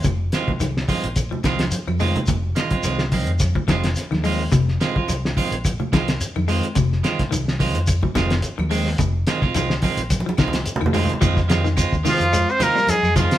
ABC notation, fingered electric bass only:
X:1
M:4/4
L:1/16
Q:"Swing 16ths" 1/4=108
K:Fm
V:1 name="Fingered electric bass" clef=bass
F,,,2 z2 C,,2 z B,,,2 z C,,2 z F,,2 z | F,,,2 z2 C,,3 F,,2 z F,,,2 z E,,3 | F,,,2 z2 C,,2 z B,,,2 z C,,2 z F,,2 z | F,,,2 z2 C,,3 F,,2 z F,,,2 z E,,3 |
F,,,2 z2 C,,2 z B,,,2 z C,,2 z F,,2 z | F,,4- F,, E,, z F,,2 z4 F,,2 z |]